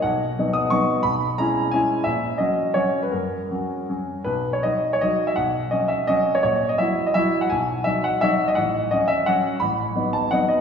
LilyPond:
\new Staff \with { instrumentName = "Grand piano" } { \time 3/4 \key b \major \tempo 4 = 170 << { fis''4. dis'''8 cis'''4 | b''4 ais''4 gis''4 | e''4 dis''4 cis''8. b'16 | ais'2 r4 |
b'8. cis''16 dis''8. cis''16 dis''8. e''16 | fis''4 dis''8 e''8 dis''8. cis''16 | cis''8. dis''16 e''8. dis''16 e''8. fis''16 | gis''4 e''8 fis''8 e''8. dis''16 |
\key fis \dorian fis''4 dis''8 e''8 fis''4 | b''4. a''8 fis''8 dis''8 | } \\ { b,,4 <fis b dis'>4 <fis b dis'>4 | b,,4 <gis cis' e'>4 <gis cis' e'>4 | ais,,4 <fis cis' fis'>4 <fis cis' fis'>4 | fis,4 <fis cis' fis'>4 <fis cis' fis'>4 |
b,,4 <fis dis' fis'>4 <fis dis' fis'>4 | b,,4 <fis cis' fis'>4 <fis cis' fis'>4 | ais,,4 <fis e' fis'>4 <fis e' fis'>4 | b,,4 <fis dis' fis'>4 <fis dis' fis'>4 |
a,,4 <fis cis' fis'>4 <fis cis' fis'>4 | a,,4 <fis b dis'>4 <fis b dis'>4 | } >> }